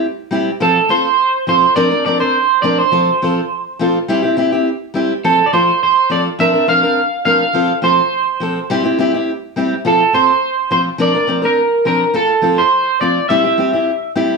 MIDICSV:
0, 0, Header, 1, 4, 480
1, 0, Start_track
1, 0, Key_signature, -1, "major"
1, 0, Tempo, 576369
1, 507, Time_signature, 4, 2, 24, 8
1, 11971, End_track
2, 0, Start_track
2, 0, Title_t, "Clean electric guitar"
2, 0, Program_c, 0, 27
2, 518, Note_on_c, 0, 69, 89
2, 737, Note_off_c, 0, 69, 0
2, 753, Note_on_c, 0, 72, 98
2, 1198, Note_off_c, 0, 72, 0
2, 1239, Note_on_c, 0, 72, 102
2, 1458, Note_off_c, 0, 72, 0
2, 1465, Note_on_c, 0, 74, 118
2, 1703, Note_off_c, 0, 74, 0
2, 1713, Note_on_c, 0, 74, 108
2, 1831, Note_off_c, 0, 74, 0
2, 1834, Note_on_c, 0, 72, 98
2, 2166, Note_off_c, 0, 72, 0
2, 2182, Note_on_c, 0, 74, 102
2, 2318, Note_off_c, 0, 74, 0
2, 2318, Note_on_c, 0, 72, 85
2, 3277, Note_off_c, 0, 72, 0
2, 4372, Note_on_c, 0, 69, 90
2, 4534, Note_off_c, 0, 69, 0
2, 4549, Note_on_c, 0, 74, 66
2, 4600, Note_off_c, 0, 74, 0
2, 4610, Note_on_c, 0, 72, 90
2, 4826, Note_off_c, 0, 72, 0
2, 4856, Note_on_c, 0, 72, 103
2, 5070, Note_off_c, 0, 72, 0
2, 5094, Note_on_c, 0, 74, 98
2, 5156, Note_off_c, 0, 74, 0
2, 5330, Note_on_c, 0, 76, 109
2, 5566, Note_off_c, 0, 76, 0
2, 5569, Note_on_c, 0, 77, 116
2, 6009, Note_off_c, 0, 77, 0
2, 6040, Note_on_c, 0, 77, 108
2, 6485, Note_off_c, 0, 77, 0
2, 6527, Note_on_c, 0, 72, 89
2, 7448, Note_off_c, 0, 72, 0
2, 8222, Note_on_c, 0, 69, 86
2, 8433, Note_off_c, 0, 69, 0
2, 8447, Note_on_c, 0, 72, 99
2, 8916, Note_off_c, 0, 72, 0
2, 8926, Note_on_c, 0, 72, 88
2, 8989, Note_off_c, 0, 72, 0
2, 9176, Note_on_c, 0, 74, 108
2, 9503, Note_off_c, 0, 74, 0
2, 9537, Note_on_c, 0, 70, 87
2, 9873, Note_off_c, 0, 70, 0
2, 9883, Note_on_c, 0, 70, 94
2, 10123, Note_off_c, 0, 70, 0
2, 10126, Note_on_c, 0, 69, 94
2, 10478, Note_on_c, 0, 72, 98
2, 10493, Note_off_c, 0, 69, 0
2, 10808, Note_off_c, 0, 72, 0
2, 10833, Note_on_c, 0, 74, 101
2, 11063, Note_off_c, 0, 74, 0
2, 11067, Note_on_c, 0, 76, 97
2, 11755, Note_off_c, 0, 76, 0
2, 11971, End_track
3, 0, Start_track
3, 0, Title_t, "Steel-string acoustic guitar"
3, 0, Program_c, 1, 25
3, 256, Note_on_c, 1, 55, 76
3, 264, Note_on_c, 1, 60, 72
3, 268, Note_on_c, 1, 64, 77
3, 271, Note_on_c, 1, 67, 85
3, 408, Note_off_c, 1, 55, 0
3, 412, Note_off_c, 1, 60, 0
3, 414, Note_off_c, 1, 64, 0
3, 416, Note_off_c, 1, 67, 0
3, 502, Note_on_c, 1, 53, 76
3, 506, Note_on_c, 1, 60, 82
3, 510, Note_on_c, 1, 65, 85
3, 511, Note_on_c, 1, 69, 84
3, 651, Note_off_c, 1, 53, 0
3, 653, Note_off_c, 1, 60, 0
3, 656, Note_off_c, 1, 65, 0
3, 656, Note_off_c, 1, 69, 0
3, 744, Note_on_c, 1, 60, 68
3, 753, Note_on_c, 1, 65, 68
3, 757, Note_on_c, 1, 69, 74
3, 893, Note_off_c, 1, 60, 0
3, 897, Note_off_c, 1, 65, 0
3, 899, Note_off_c, 1, 69, 0
3, 1223, Note_on_c, 1, 53, 60
3, 1229, Note_on_c, 1, 60, 65
3, 1238, Note_on_c, 1, 65, 67
3, 1239, Note_on_c, 1, 69, 66
3, 1372, Note_off_c, 1, 53, 0
3, 1376, Note_off_c, 1, 60, 0
3, 1380, Note_off_c, 1, 65, 0
3, 1380, Note_off_c, 1, 69, 0
3, 1463, Note_on_c, 1, 53, 82
3, 1466, Note_on_c, 1, 60, 83
3, 1471, Note_on_c, 1, 62, 88
3, 1473, Note_on_c, 1, 70, 86
3, 1582, Note_off_c, 1, 70, 0
3, 1589, Note_off_c, 1, 53, 0
3, 1590, Note_off_c, 1, 62, 0
3, 1591, Note_off_c, 1, 60, 0
3, 1592, Note_on_c, 1, 70, 64
3, 1600, Note_on_c, 1, 62, 55
3, 1607, Note_on_c, 1, 60, 49
3, 1709, Note_off_c, 1, 60, 0
3, 1709, Note_off_c, 1, 70, 0
3, 1712, Note_on_c, 1, 53, 65
3, 1713, Note_off_c, 1, 62, 0
3, 1719, Note_on_c, 1, 60, 63
3, 1728, Note_on_c, 1, 62, 70
3, 1730, Note_on_c, 1, 70, 79
3, 1820, Note_off_c, 1, 70, 0
3, 1830, Note_on_c, 1, 70, 59
3, 1831, Note_off_c, 1, 62, 0
3, 1833, Note_off_c, 1, 60, 0
3, 1834, Note_off_c, 1, 53, 0
3, 1841, Note_on_c, 1, 62, 48
3, 1843, Note_on_c, 1, 60, 48
3, 1973, Note_off_c, 1, 70, 0
3, 1978, Note_off_c, 1, 62, 0
3, 1980, Note_off_c, 1, 60, 0
3, 2190, Note_on_c, 1, 53, 68
3, 2197, Note_on_c, 1, 60, 69
3, 2204, Note_on_c, 1, 62, 73
3, 2208, Note_on_c, 1, 70, 70
3, 2337, Note_off_c, 1, 53, 0
3, 2340, Note_off_c, 1, 60, 0
3, 2344, Note_off_c, 1, 62, 0
3, 2346, Note_off_c, 1, 70, 0
3, 2430, Note_on_c, 1, 53, 75
3, 2436, Note_on_c, 1, 60, 76
3, 2437, Note_on_c, 1, 65, 72
3, 2441, Note_on_c, 1, 69, 74
3, 2577, Note_off_c, 1, 53, 0
3, 2580, Note_off_c, 1, 60, 0
3, 2580, Note_off_c, 1, 65, 0
3, 2583, Note_off_c, 1, 69, 0
3, 2682, Note_on_c, 1, 53, 62
3, 2687, Note_on_c, 1, 60, 64
3, 2696, Note_on_c, 1, 65, 66
3, 2697, Note_on_c, 1, 69, 72
3, 2823, Note_off_c, 1, 53, 0
3, 2826, Note_off_c, 1, 60, 0
3, 2830, Note_off_c, 1, 65, 0
3, 2831, Note_off_c, 1, 69, 0
3, 3159, Note_on_c, 1, 53, 67
3, 3169, Note_on_c, 1, 60, 79
3, 3173, Note_on_c, 1, 65, 79
3, 3179, Note_on_c, 1, 69, 70
3, 3302, Note_off_c, 1, 53, 0
3, 3307, Note_off_c, 1, 60, 0
3, 3309, Note_off_c, 1, 65, 0
3, 3312, Note_off_c, 1, 69, 0
3, 3401, Note_on_c, 1, 55, 83
3, 3408, Note_on_c, 1, 60, 92
3, 3411, Note_on_c, 1, 64, 94
3, 3414, Note_on_c, 1, 67, 94
3, 3509, Note_off_c, 1, 67, 0
3, 3519, Note_on_c, 1, 67, 62
3, 3520, Note_off_c, 1, 55, 0
3, 3521, Note_off_c, 1, 64, 0
3, 3524, Note_off_c, 1, 60, 0
3, 3531, Note_on_c, 1, 64, 60
3, 3538, Note_on_c, 1, 60, 54
3, 3633, Note_off_c, 1, 60, 0
3, 3634, Note_off_c, 1, 67, 0
3, 3641, Note_off_c, 1, 64, 0
3, 3643, Note_on_c, 1, 60, 72
3, 3649, Note_on_c, 1, 64, 79
3, 3653, Note_on_c, 1, 67, 72
3, 3756, Note_off_c, 1, 67, 0
3, 3761, Note_off_c, 1, 60, 0
3, 3764, Note_off_c, 1, 64, 0
3, 3766, Note_on_c, 1, 67, 63
3, 3775, Note_on_c, 1, 64, 52
3, 3785, Note_on_c, 1, 60, 54
3, 3903, Note_off_c, 1, 67, 0
3, 3907, Note_off_c, 1, 64, 0
3, 3912, Note_off_c, 1, 60, 0
3, 4112, Note_on_c, 1, 55, 66
3, 4123, Note_on_c, 1, 60, 73
3, 4124, Note_on_c, 1, 64, 74
3, 4134, Note_on_c, 1, 67, 76
3, 4259, Note_off_c, 1, 55, 0
3, 4265, Note_off_c, 1, 60, 0
3, 4266, Note_off_c, 1, 64, 0
3, 4270, Note_off_c, 1, 67, 0
3, 4367, Note_on_c, 1, 53, 73
3, 4368, Note_on_c, 1, 60, 75
3, 4376, Note_on_c, 1, 69, 83
3, 4507, Note_off_c, 1, 53, 0
3, 4507, Note_off_c, 1, 60, 0
3, 4512, Note_off_c, 1, 69, 0
3, 4603, Note_on_c, 1, 53, 58
3, 4612, Note_on_c, 1, 65, 68
3, 4621, Note_on_c, 1, 69, 63
3, 4745, Note_off_c, 1, 53, 0
3, 4750, Note_off_c, 1, 65, 0
3, 4754, Note_off_c, 1, 69, 0
3, 5077, Note_on_c, 1, 53, 67
3, 5081, Note_on_c, 1, 60, 60
3, 5091, Note_on_c, 1, 65, 66
3, 5095, Note_on_c, 1, 69, 70
3, 5222, Note_off_c, 1, 53, 0
3, 5224, Note_off_c, 1, 60, 0
3, 5229, Note_off_c, 1, 65, 0
3, 5231, Note_off_c, 1, 69, 0
3, 5319, Note_on_c, 1, 53, 79
3, 5329, Note_on_c, 1, 60, 78
3, 5329, Note_on_c, 1, 62, 91
3, 5335, Note_on_c, 1, 70, 97
3, 5434, Note_off_c, 1, 70, 0
3, 5440, Note_off_c, 1, 53, 0
3, 5443, Note_off_c, 1, 62, 0
3, 5444, Note_on_c, 1, 70, 57
3, 5445, Note_off_c, 1, 60, 0
3, 5453, Note_on_c, 1, 62, 54
3, 5462, Note_on_c, 1, 60, 50
3, 5554, Note_off_c, 1, 60, 0
3, 5558, Note_off_c, 1, 70, 0
3, 5560, Note_on_c, 1, 53, 67
3, 5563, Note_off_c, 1, 62, 0
3, 5564, Note_on_c, 1, 60, 63
3, 5573, Note_on_c, 1, 62, 65
3, 5574, Note_on_c, 1, 70, 70
3, 5677, Note_off_c, 1, 70, 0
3, 5681, Note_off_c, 1, 53, 0
3, 5683, Note_off_c, 1, 60, 0
3, 5685, Note_off_c, 1, 62, 0
3, 5687, Note_on_c, 1, 70, 55
3, 5695, Note_on_c, 1, 62, 50
3, 5699, Note_on_c, 1, 60, 49
3, 5824, Note_off_c, 1, 70, 0
3, 5828, Note_off_c, 1, 62, 0
3, 5831, Note_off_c, 1, 60, 0
3, 6039, Note_on_c, 1, 53, 65
3, 6046, Note_on_c, 1, 60, 63
3, 6050, Note_on_c, 1, 62, 68
3, 6054, Note_on_c, 1, 70, 66
3, 6184, Note_off_c, 1, 53, 0
3, 6188, Note_off_c, 1, 60, 0
3, 6189, Note_off_c, 1, 62, 0
3, 6191, Note_off_c, 1, 70, 0
3, 6272, Note_on_c, 1, 53, 68
3, 6283, Note_on_c, 1, 60, 77
3, 6285, Note_on_c, 1, 65, 78
3, 6289, Note_on_c, 1, 69, 82
3, 6420, Note_off_c, 1, 53, 0
3, 6426, Note_off_c, 1, 60, 0
3, 6427, Note_off_c, 1, 65, 0
3, 6429, Note_off_c, 1, 69, 0
3, 6511, Note_on_c, 1, 53, 62
3, 6516, Note_on_c, 1, 60, 63
3, 6523, Note_on_c, 1, 65, 63
3, 6531, Note_on_c, 1, 69, 70
3, 6660, Note_off_c, 1, 53, 0
3, 6662, Note_off_c, 1, 60, 0
3, 6666, Note_off_c, 1, 65, 0
3, 6670, Note_off_c, 1, 69, 0
3, 6997, Note_on_c, 1, 53, 59
3, 7006, Note_on_c, 1, 60, 66
3, 7018, Note_on_c, 1, 69, 65
3, 7143, Note_off_c, 1, 53, 0
3, 7148, Note_off_c, 1, 60, 0
3, 7154, Note_off_c, 1, 69, 0
3, 7244, Note_on_c, 1, 55, 87
3, 7251, Note_on_c, 1, 60, 92
3, 7253, Note_on_c, 1, 64, 96
3, 7257, Note_on_c, 1, 67, 101
3, 7347, Note_off_c, 1, 67, 0
3, 7357, Note_off_c, 1, 64, 0
3, 7357, Note_on_c, 1, 67, 66
3, 7363, Note_off_c, 1, 55, 0
3, 7365, Note_off_c, 1, 60, 0
3, 7367, Note_on_c, 1, 64, 62
3, 7375, Note_on_c, 1, 60, 58
3, 7475, Note_off_c, 1, 67, 0
3, 7478, Note_off_c, 1, 60, 0
3, 7480, Note_off_c, 1, 64, 0
3, 7482, Note_on_c, 1, 55, 78
3, 7488, Note_on_c, 1, 60, 79
3, 7495, Note_on_c, 1, 64, 80
3, 7499, Note_on_c, 1, 67, 82
3, 7602, Note_off_c, 1, 55, 0
3, 7602, Note_off_c, 1, 67, 0
3, 7605, Note_off_c, 1, 60, 0
3, 7609, Note_off_c, 1, 64, 0
3, 7612, Note_on_c, 1, 67, 68
3, 7621, Note_on_c, 1, 64, 60
3, 7632, Note_on_c, 1, 60, 50
3, 7747, Note_off_c, 1, 67, 0
3, 7752, Note_off_c, 1, 64, 0
3, 7757, Note_off_c, 1, 60, 0
3, 7961, Note_on_c, 1, 55, 67
3, 7969, Note_on_c, 1, 60, 82
3, 7973, Note_on_c, 1, 64, 74
3, 7980, Note_on_c, 1, 67, 76
3, 8105, Note_off_c, 1, 55, 0
3, 8109, Note_off_c, 1, 60, 0
3, 8111, Note_off_c, 1, 64, 0
3, 8114, Note_off_c, 1, 67, 0
3, 8200, Note_on_c, 1, 53, 75
3, 8200, Note_on_c, 1, 60, 77
3, 8207, Note_on_c, 1, 65, 79
3, 8209, Note_on_c, 1, 69, 80
3, 8344, Note_off_c, 1, 53, 0
3, 8344, Note_off_c, 1, 60, 0
3, 8348, Note_off_c, 1, 65, 0
3, 8349, Note_off_c, 1, 69, 0
3, 8445, Note_on_c, 1, 60, 68
3, 8446, Note_on_c, 1, 65, 61
3, 8453, Note_on_c, 1, 69, 73
3, 8586, Note_off_c, 1, 60, 0
3, 8587, Note_off_c, 1, 65, 0
3, 8591, Note_off_c, 1, 69, 0
3, 8916, Note_on_c, 1, 53, 59
3, 8923, Note_on_c, 1, 60, 68
3, 8924, Note_on_c, 1, 65, 67
3, 9062, Note_off_c, 1, 53, 0
3, 9065, Note_off_c, 1, 60, 0
3, 9066, Note_off_c, 1, 65, 0
3, 9146, Note_on_c, 1, 53, 88
3, 9155, Note_on_c, 1, 60, 91
3, 9159, Note_on_c, 1, 62, 85
3, 9159, Note_on_c, 1, 70, 88
3, 9273, Note_off_c, 1, 70, 0
3, 9274, Note_off_c, 1, 53, 0
3, 9278, Note_off_c, 1, 60, 0
3, 9280, Note_off_c, 1, 62, 0
3, 9283, Note_on_c, 1, 70, 62
3, 9291, Note_on_c, 1, 62, 55
3, 9388, Note_on_c, 1, 53, 69
3, 9390, Note_off_c, 1, 62, 0
3, 9396, Note_on_c, 1, 60, 69
3, 9397, Note_off_c, 1, 70, 0
3, 9407, Note_on_c, 1, 70, 74
3, 9501, Note_off_c, 1, 70, 0
3, 9511, Note_on_c, 1, 70, 60
3, 9514, Note_off_c, 1, 53, 0
3, 9518, Note_off_c, 1, 60, 0
3, 9523, Note_on_c, 1, 62, 52
3, 9530, Note_on_c, 1, 60, 50
3, 9655, Note_off_c, 1, 70, 0
3, 9661, Note_off_c, 1, 62, 0
3, 9665, Note_off_c, 1, 60, 0
3, 9870, Note_on_c, 1, 53, 67
3, 9875, Note_on_c, 1, 60, 67
3, 9884, Note_on_c, 1, 62, 68
3, 9888, Note_on_c, 1, 70, 72
3, 10018, Note_off_c, 1, 53, 0
3, 10020, Note_off_c, 1, 60, 0
3, 10025, Note_off_c, 1, 62, 0
3, 10027, Note_off_c, 1, 70, 0
3, 10114, Note_on_c, 1, 65, 81
3, 10116, Note_on_c, 1, 69, 82
3, 10260, Note_off_c, 1, 65, 0
3, 10261, Note_off_c, 1, 69, 0
3, 10340, Note_on_c, 1, 53, 63
3, 10346, Note_on_c, 1, 60, 64
3, 10351, Note_on_c, 1, 65, 67
3, 10358, Note_on_c, 1, 69, 66
3, 10493, Note_off_c, 1, 53, 0
3, 10496, Note_off_c, 1, 60, 0
3, 10498, Note_off_c, 1, 65, 0
3, 10502, Note_off_c, 1, 69, 0
3, 10831, Note_on_c, 1, 53, 61
3, 10840, Note_on_c, 1, 60, 67
3, 10843, Note_on_c, 1, 65, 66
3, 10978, Note_off_c, 1, 53, 0
3, 10982, Note_off_c, 1, 60, 0
3, 10984, Note_off_c, 1, 65, 0
3, 11075, Note_on_c, 1, 60, 80
3, 11076, Note_on_c, 1, 55, 79
3, 11083, Note_on_c, 1, 64, 82
3, 11085, Note_on_c, 1, 67, 85
3, 11184, Note_off_c, 1, 67, 0
3, 11194, Note_on_c, 1, 67, 59
3, 11196, Note_off_c, 1, 60, 0
3, 11196, Note_off_c, 1, 64, 0
3, 11197, Note_off_c, 1, 55, 0
3, 11206, Note_on_c, 1, 64, 51
3, 11214, Note_on_c, 1, 60, 45
3, 11305, Note_off_c, 1, 60, 0
3, 11306, Note_on_c, 1, 55, 69
3, 11311, Note_off_c, 1, 67, 0
3, 11315, Note_on_c, 1, 60, 66
3, 11317, Note_off_c, 1, 64, 0
3, 11325, Note_on_c, 1, 67, 70
3, 11426, Note_off_c, 1, 67, 0
3, 11432, Note_off_c, 1, 55, 0
3, 11436, Note_off_c, 1, 60, 0
3, 11436, Note_on_c, 1, 67, 58
3, 11444, Note_on_c, 1, 64, 50
3, 11453, Note_on_c, 1, 60, 46
3, 11576, Note_off_c, 1, 67, 0
3, 11580, Note_off_c, 1, 64, 0
3, 11585, Note_off_c, 1, 60, 0
3, 11788, Note_on_c, 1, 55, 66
3, 11789, Note_on_c, 1, 60, 69
3, 11796, Note_on_c, 1, 64, 75
3, 11799, Note_on_c, 1, 67, 86
3, 11935, Note_off_c, 1, 55, 0
3, 11936, Note_off_c, 1, 60, 0
3, 11940, Note_off_c, 1, 64, 0
3, 11941, Note_off_c, 1, 67, 0
3, 11971, End_track
4, 0, Start_track
4, 0, Title_t, "Muted steel-string acoustic guitar strokes"
4, 740, Note_on_c, 9, 29, 58
4, 823, Note_off_c, 9, 29, 0
4, 3637, Note_on_c, 9, 29, 75
4, 3720, Note_off_c, 9, 29, 0
4, 4373, Note_on_c, 9, 29, 81
4, 4456, Note_off_c, 9, 29, 0
4, 4609, Note_on_c, 9, 29, 65
4, 4693, Note_off_c, 9, 29, 0
4, 8436, Note_on_c, 9, 29, 65
4, 8520, Note_off_c, 9, 29, 0
4, 8933, Note_on_c, 9, 29, 69
4, 9016, Note_off_c, 9, 29, 0
4, 9298, Note_on_c, 9, 29, 51
4, 9381, Note_off_c, 9, 29, 0
4, 9400, Note_on_c, 9, 29, 72
4, 9483, Note_off_c, 9, 29, 0
4, 10107, Note_on_c, 9, 29, 70
4, 10190, Note_off_c, 9, 29, 0
4, 10850, Note_on_c, 9, 29, 72
4, 10933, Note_off_c, 9, 29, 0
4, 11971, End_track
0, 0, End_of_file